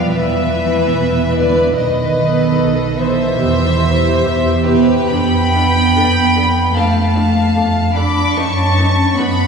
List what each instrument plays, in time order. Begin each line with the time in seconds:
Already playing: cello section F3, viola section B3 B4, violin section D5 F5
0.10 double bass section E1, cello section E3, violin section B4 E5
0.53 viola section B3 B4
0.93 double bass section E1
1.34 cello section D3, viola section B3 B4, violin section B4 D5
1.76 double bass section B1, cello section D#3, violin section B4 D#5
2.19 viola section B3 A4
2.59 double bass section B1
2.98 cello section E3, viola section B3 A4, violin section C5 E5
3.40 double bass section E2, viola section B3 G4
3.82 viola section B3 G4
4.23 double bass section E2
4.65 cello section B2, viola section B3 G4, violin section G4 B4
5.09 double bass section F2, cello section B3, viola section D4 A4, violin section G5 B5
5.54 viola section D4 A4
5.94 double bass section F2, viola section D4 A4
6.36 viola section D4 A4
6.74 double bass section F2, cello section A3, viola section D4 A4, violin section F5 A5
7.15 viola section D4 A4
7.54 double bass section F2, viola section D4 A4
7.95 viola section D4 A4, cello section D4, violin section B5 D6
8.35 double bass section F#2, cello section C#4, viola section D#4 B4, violin section A5 C#6
8.78 viola section D#4 B4
9.17 double bass section F#2, cello section B3, viola section D#4 B4, violin section F#5 B5